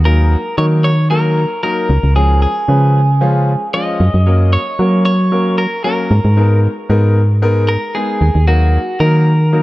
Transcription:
Already playing: fm bass D#2
0.05 grand piano F#3 A#3 D#4 A#4, clean electric guitar A#4
0.58 fm bass D#3, grand piano F#3 A#3 D#4 A#4, clean electric guitar C#5
0.84 clean electric guitar C#5
1.10 grand piano F#3 A#3 D#4 A#4, clean electric guitar A#4
1.63 grand piano F#3 A#3 D#4 A#4, clean electric guitar A#4
1.89 fm bass C#2
2.03 fm bass C#2
2.16 grand piano F3 G#3 C#4 G#4, clean electric guitar G#4
2.42 clean electric guitar G#4
2.68 fm bass C#3, grand piano F3 G#3 C#4 B4
3.21 grand piano F3 G#3 C#4 F4
3.74 grand piano F3 G#3 C#4 F4, clean electric guitar D#5
4.00 fm bass F#2
4.14 fm bass F#2
4.26 grand piano F#3 A#3 C#4 A#4
4.53 clean electric guitar C#5
4.79 grand piano F#3 A#3 C#4 A#4, fm bass F#3
5.05 clean electric guitar C#5
5.32 grand piano F#3 A#3 C#4 A#4
5.58 clean electric guitar A#4
5.84 grand piano F#3 A#3 C#4 A#4, clean electric guitar A#4
6.11 fm bass G#2
6.25 fm bass G#2
6.37 grand piano G#3 B3 D#4 A#4
6.89 fm bass G#2, grand piano G#3 B3 D#4 A#4
7.42 grand piano G#3 B3 D#4 A#4
7.69 clean electric guitar A#4
7.95 grand piano G#3 B3 D#4 G#4, clean electric guitar G#4
8.21 fm bass D#2
8.35 fm bass D#2
8.47 grand piano F#3 A#3 D#4 A#4, clean electric guitar F#4
9.00 fm bass D#3, grand piano F#3 A#3 D#4 A#4, clean electric guitar A#4
9.53 grand piano F#3 A#3 D#4 A#4

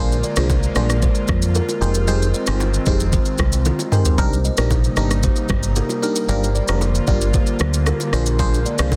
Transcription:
Already playing: fingered electric bass A#1, analog synth pad D3 G#3 A#3 F4, fm electric piano D4 F4 G#4 C5
0.12 shaker
0.24 kalimba A#4 D5, shaker
0.36 fingered electric bass C2, fm electric piano D4 F4 G#4 C5, kalimba G#4 C5, cross-stick, low bongo, shaker
0.50 kick, high bongo, shaker
0.63 shaker
0.75 fingered electric bass A#1, fm electric piano D4 F4 G#4 C5, kalimba A#4 D5, cross-stick, high bongo, low conga, shaker
0.90 cross-stick, shaker
1.02 kalimba G#4 C5, kick, low bongo, shaker
1.15 shaker
1.27 fingered electric bass F2, kick, cross-stick, low bongo, low conga, shaker
1.42 shaker
1.55 kalimba F4 A#4, high bongo, shaker
1.69 low bongo, shaker
1.81 fingered electric bass F1, analog synth pad D#3 G#3 C4, fm electric piano D#4 G4 G#4 C5, kalimba F4 A#4, shaker
1.95 kalimba G4 A#4, shaker
2.07 fm electric piano D#4 G4 G#4 C5, kalimba G#4 C5, low conga, shaker
2.22 shaker
2.34 kalimba C5 D#5, shaker
2.47 fingered electric bass G1, fm electric piano D#4 G4 G#4 C5, kalimba G#4 C5, cross-stick, low bongo, shaker
2.60 high bongo, shaker
2.74 shaker
2.86 fingered electric bass F1, fm electric piano D#4 G4 G#4 C5, kalimba C5 D#5, kick, high bongo, low conga, shaker
3.00 shaker
3.13 kalimba G#4 C5, kick, low bongo, shaker
3.25 shaker
3.38 fingered electric bass C2, kick, cross-stick, low bongo, low conga, shaker
3.52 shaker
3.65 kalimba F4 G#4, high tom, high bongo, shaker
3.79 low bongo, shaker
3.92 fm electric piano D#4 G4 G#4 C5, kalimba G4 A#4, mid tom, shaker
4.05 kalimba G#4 C5, floor tom, shaker
4.18 fingered electric bass C2, analog synth pad C3 G3 A#3 D#4, fm electric piano D4 D#4 G4 A#4, kalimba G4 C5, kick, low conga, shaker
4.33 shaker
4.45 kalimba C5 D#5, shaker
4.57 fingered electric bass A#1, fm electric piano D4 D#4 G4 A#4, kalimba G#4 C5, cross-stick, low bongo, shaker
4.70 kick, high bongo, shaker
4.84 shaker
4.96 fingered electric bass G1, fm electric piano D4 D#4 G4 A#4, kalimba C5 D#5, cross-stick, high bongo, low conga, shaker
5.11 cross-stick, shaker
5.23 kalimba G4 C5, kick, low bongo, shaker
5.36 shaker
5.48 fingered electric bass G1, kick, cross-stick, low bongo, low conga, shaker
5.63 shaker
5.76 kalimba G4 A#4, high bongo, shaker
5.89 low bongo, shaker
6.02 fm electric piano D4 D#4 G4 A#4, kalimba G4 A#4, shaker
6.16 kalimba G4 A#4, shaker
6.29 fingered electric bass G1, analog synth pad D3 F4, fm electric piano D4 F4 G4 A#4, kalimba G4 C5, low conga, shaker
6.44 shaker
6.55 kalimba A#4 D5, shaker
6.68 fingered electric bass F1, fm electric piano D4 F4 G4 A#4, kalimba G#4 C5, cross-stick, low bongo, shaker
6.81 high bongo, shaker
6.95 shaker
7.07 fingered electric bass G1, fm electric piano D4 F4 G4 A#4, kalimba A#4 D5, kick, high bongo, low conga, shaker
7.21 shaker
7.34 kalimba G4 C5, kick, low bongo, shaker
7.47 shaker
7.59 fingered electric bass D2, cross-stick, low bongo, low conga, shaker
7.74 shaker
7.86 kalimba G4 A#4, cross-stick, high bongo, shaker
8.00 low bongo, shaker
8.13 fingered electric bass A#1, analog synth pad G#3 F4, fm electric piano D4 F4 G#4 C5, kalimba F4 A#4, cross-stick, shaker
8.26 kalimba G4 A#4, shaker
8.39 fm electric piano D4 F4 G#4 C5, kalimba F4 A#4, kick, low conga, shaker
8.54 shaker
8.66 kalimba A#4 D5, shaker
8.78 fingered electric bass C2, fm electric piano D4 F4 G#4 C5, kalimba G#4 C5, cross-stick, low bongo, shaker
8.92 kick, high bongo, shaker

